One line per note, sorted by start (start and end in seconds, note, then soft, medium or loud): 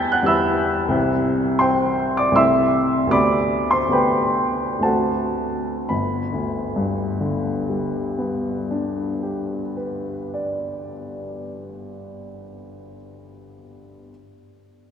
0.00 0.21 E2 medium
0.00 0.22 G3 soft
0.00 0.23 B3 soft
0.00 0.24 E4 soft
0.00 0.97 G5 medium
0.00 0.97 A5 medium
0.00 0.28 B5 medium
0.00 0.26 E6 medium
0.00 0.97 G6 medium
0.00 0.97 A6 medium
0.00 0.97 B6 medium
0.12 0.28 F#5 medium
0.12 0.29 F#6 medium
0.23 0.90 E2 medium
0.23 0.89 G3 soft
0.23 0.91 B3 soft
0.23 0.90 E4 soft
0.23 0.93 E6 medium
0.28 0.90 E5 medium
0.28 0.90 B5 medium
0.88 2.30 C2 medium
0.88 2.31 G3 soft
0.88 2.31 C4 soft
0.88 2.32 E4 soft
1.59 2.14 C5 soft
1.59 2.13 G5 medium
1.59 2.16 C6 medium
2.17 2.36 D5 medium
2.17 2.37 D6 medium
2.32 3.08 C2 soft
2.32 3.09 A3 soft
2.32 3.09 C4 soft
2.36 3.10 E4 soft
2.36 3.09 E5 medium
2.36 3.08 C6 medium
2.36 3.12 E6 medium
3.07 3.87 D2 soft
3.07 3.88 B3 soft
3.07 3.89 G4 soft
3.11 3.68 D5 medium
3.11 3.68 B5 medium
3.11 3.71 D6 medium
3.71 3.92 C5 soft
3.71 3.92 C6 medium
3.88 4.77 D2 soft
3.88 4.80 B3 soft
3.88 4.80 G4 soft
3.88 4.84 B5 medium
3.93 4.81 B4 soft
3.93 4.81 G5 soft
4.79 5.84 D2 soft
4.79 5.85 A3 soft
4.79 5.86 C4 soft
4.79 5.86 F#4 soft
4.79 5.89 A5 medium
4.85 5.86 A4 soft
4.85 5.86 F#5 soft
5.89 9.61 G1 medium
5.89 9.60 B5 medium
6.33 10.04 D2 soft
6.76 10.47 G2 soft
7.21 10.92 D3 soft
7.69 11.41 G3 soft
8.19 11.90 B3 soft
8.71 12.42 D4 soft
9.23 12.94 G4 soft
9.77 13.30 B4 soft
10.34 13.30 D5 soft